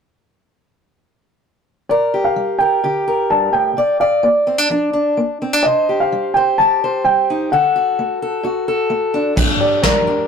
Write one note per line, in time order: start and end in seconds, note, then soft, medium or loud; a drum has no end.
1.89 2.32 G2 soft
1.89 2.60 A#4 soft
1.89 2.22 D5 medium
2.14 2.83 G4 soft
2.24 2.57 F5 medium
2.36 2.79 G3 soft
2.59 3.06 A#4 soft
2.59 3.32 G5 medium
2.84 3.26 D3 soft
2.84 3.75 G4 soft
3.08 3.75 A#4 soft
3.30 3.53 G2 soft
3.30 3.54 A5 medium
3.53 3.76 A2 soft
3.53 4.01 G5 medium
3.77 4.19 A#2 medium
3.77 3.99 D5 medium
4.00 5.62 D5 soft
4.00 4.24 F5 medium
4.23 4.66 A#3 soft
4.23 5.13 D5 medium
4.47 4.58 C4 soft
4.58 4.70 D4 soft
4.70 5.12 F3 soft
4.70 4.92 D4 soft
4.93 5.41 D4 soft
5.17 5.59 A#3 soft
5.42 5.53 C4 soft
5.53 5.65 D4 soft
5.63 6.07 C3 medium
5.63 6.35 C5 soft
5.63 5.96 D#5 medium
5.89 6.58 G4 soft
6.00 6.36 F5 medium
6.12 6.54 G3 soft
6.34 6.82 C5 soft
6.34 6.58 G5 medium
6.58 7.01 G3 soft
6.58 7.50 G4 soft
6.58 7.01 A5 medium
6.84 7.50 C5 soft
7.05 7.47 G3 soft
7.05 7.53 G5 medium
7.30 7.49 D#4 soft
7.52 7.94 D3 medium
7.52 8.21 A4 medium
7.52 8.87 F#5 medium
7.76 8.43 F#4 soft
7.99 8.40 A3 medium
8.22 8.67 A4 soft
8.43 8.86 A2 soft
8.43 9.35 F#4 soft
8.68 9.38 A4 soft
8.90 9.32 A3 soft
9.14 9.34 D4 soft
9.36 9.79 G2 medium
9.36 10.07 D4 soft
9.36 kick medium
9.36 crash medium
9.60 10.27 G4 soft
9.60 9.81 D5 medium
9.83 10.25 G3 medium
9.83 10.27 A#4 medium
9.83 10.26 D5 medium
9.83 kick medium
9.83 snare medium
10.07 10.27 D4 soft